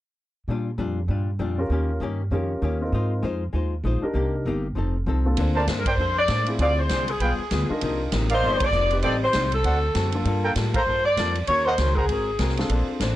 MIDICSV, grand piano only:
0, 0, Header, 1, 2, 480
1, 0, Start_track
1, 0, Key_signature, -2, "major"
1, 0, Tempo, 305499
1, 760, Time_signature, 4, 2, 24, 8
1, 20674, End_track
2, 0, Start_track
2, 0, Title_t, "Grand piano"
2, 0, Program_c, 0, 0
2, 2484, Note_on_c, 0, 61, 50
2, 2490, Note_on_c, 0, 65, 51
2, 2493, Note_on_c, 0, 67, 46
2, 2499, Note_on_c, 0, 70, 58
2, 3119, Note_off_c, 0, 61, 0
2, 3123, Note_off_c, 0, 65, 0
2, 3124, Note_off_c, 0, 67, 0
2, 3127, Note_off_c, 0, 70, 0
2, 3632, Note_on_c, 0, 61, 48
2, 3645, Note_on_c, 0, 65, 44
2, 3645, Note_on_c, 0, 67, 43
2, 3651, Note_on_c, 0, 70, 49
2, 4347, Note_off_c, 0, 61, 0
2, 4353, Note_off_c, 0, 65, 0
2, 4354, Note_off_c, 0, 67, 0
2, 4357, Note_off_c, 0, 70, 0
2, 4417, Note_on_c, 0, 60, 49
2, 4424, Note_on_c, 0, 63, 45
2, 4431, Note_on_c, 0, 65, 44
2, 4434, Note_on_c, 0, 70, 52
2, 5046, Note_off_c, 0, 60, 0
2, 5050, Note_off_c, 0, 63, 0
2, 5053, Note_off_c, 0, 65, 0
2, 5055, Note_off_c, 0, 70, 0
2, 6314, Note_on_c, 0, 62, 52
2, 6323, Note_on_c, 0, 63, 50
2, 6329, Note_on_c, 0, 67, 45
2, 6335, Note_on_c, 0, 70, 62
2, 6954, Note_off_c, 0, 62, 0
2, 6958, Note_off_c, 0, 63, 0
2, 6961, Note_off_c, 0, 67, 0
2, 6964, Note_off_c, 0, 70, 0
2, 8248, Note_on_c, 0, 46, 47
2, 8252, Note_on_c, 0, 60, 42
2, 8256, Note_on_c, 0, 62, 42
2, 8266, Note_on_c, 0, 65, 47
2, 8273, Note_on_c, 0, 69, 53
2, 8880, Note_off_c, 0, 46, 0
2, 8882, Note_off_c, 0, 60, 0
2, 8884, Note_off_c, 0, 62, 0
2, 8889, Note_off_c, 0, 65, 0
2, 8892, Note_off_c, 0, 69, 0
2, 10173, Note_on_c, 0, 60, 47
2, 10173, Note_on_c, 0, 64, 49
2, 10183, Note_on_c, 0, 65, 49
2, 10191, Note_on_c, 0, 68, 54
2, 10801, Note_off_c, 0, 60, 0
2, 10802, Note_off_c, 0, 64, 0
2, 10807, Note_off_c, 0, 65, 0
2, 10811, Note_off_c, 0, 68, 0
2, 12089, Note_on_c, 0, 62, 53
2, 12101, Note_on_c, 0, 63, 49
2, 12104, Note_on_c, 0, 65, 49
2, 12114, Note_on_c, 0, 70, 63
2, 12719, Note_off_c, 0, 62, 0
2, 12725, Note_off_c, 0, 63, 0
2, 12726, Note_off_c, 0, 65, 0
2, 12731, Note_off_c, 0, 70, 0
2, 14006, Note_on_c, 0, 60, 58
2, 14010, Note_on_c, 0, 63, 53
2, 14017, Note_on_c, 0, 67, 53
2, 14025, Note_on_c, 0, 71, 63
2, 14637, Note_off_c, 0, 60, 0
2, 14639, Note_off_c, 0, 63, 0
2, 14643, Note_off_c, 0, 67, 0
2, 14647, Note_off_c, 0, 71, 0
2, 15934, Note_on_c, 0, 58, 57
2, 15934, Note_on_c, 0, 62, 49
2, 15946, Note_on_c, 0, 65, 52
2, 15954, Note_on_c, 0, 69, 61
2, 16561, Note_off_c, 0, 58, 0
2, 16561, Note_off_c, 0, 62, 0
2, 16567, Note_off_c, 0, 65, 0
2, 16571, Note_off_c, 0, 69, 0
2, 19766, Note_on_c, 0, 60, 53
2, 19773, Note_on_c, 0, 62, 50
2, 19780, Note_on_c, 0, 65, 51
2, 19783, Note_on_c, 0, 69, 58
2, 20399, Note_off_c, 0, 60, 0
2, 20402, Note_off_c, 0, 62, 0
2, 20406, Note_off_c, 0, 65, 0
2, 20407, Note_off_c, 0, 69, 0
2, 20674, End_track
0, 0, End_of_file